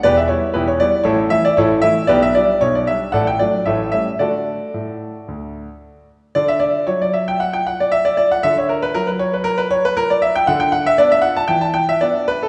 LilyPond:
<<
  \new Staff \with { instrumentName = "Grand piano" } { \time 4/4 \key d \major \tempo 4 = 116 <g' b' d''>16 e''16 cis''8 <e' g' b'>16 cis''16 d''8 <e' a' cis''>8 e''16 d''16 <e' a' cis''>8 e''8 | <g' b' d''>16 e''16 d''8 cis''16 d''16 e''8 <a' d'' fis''>16 g''16 d''8 <a' cis'' e''>8 e''8 | <fis' a' d''>2.~ <fis' a' d''>8 r8 | d''16 e''16 d''8 cis''16 d''16 e''16 g''16 fis''16 g''16 fis''16 d''16 e''16 d''16 d''16 fis''16 |
e''16 cis''16 bes'16 b'16 bes'16 b'16 cis''16 b'16 bes'16 b'16 cis''16 b'16 bes'16 d''16 e''16 g''16 | fis''16 g''16 fis''16 e''16 d''16 e''16 fis''16 a''16 g''16 a''16 g''16 e''16 d''8 b'16 a'16 | }
  \new Staff \with { instrumentName = "Grand piano" } { \clef bass \time 4/4 \key d \major <e,, e,>8 <g b e'>8 <e,, e,>8 <g b e'>8 <a,, a,>8 <e a e'>8 <a,, a,>8 <e a e'>8 | <b,, b,>8 <g d'>8 <b,, b,>8 <g d'>8 <a,, a,>8 <fis a d'>8 <a,, a,>8 <g a cis'>8 | <d a d'>4 a,4 d,4 r4 | d4 fis2. |
d4 fis2. | d4 <b d'>4 e4 <b d'>4 | }
>>